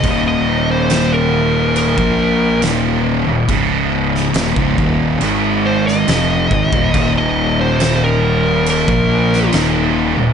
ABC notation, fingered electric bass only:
X:1
M:4/4
L:1/16
Q:1/4=70
K:Ebmix
V:1 name="Fingered electric bass" clef=bass
E,,,8- E,,, B,,,3 E,,,3 E,,, | D,,,4 E,,, D,,, E,,,2 A,,,4 F,,,2 A,,, E,,, | E,,,8- E,,, B,,,3 E,,,3 E,,, |]